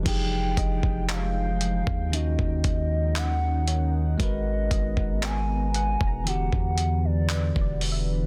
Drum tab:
CC |x---------------|----------------|
HH |x-x-x-x-x-x-x-x-|x-x-x-x-x-x-x-o-|
CP |----x-------x---|----x-------x---|
BD |o-oo---o-oo-----|o-oo---o-o---o--|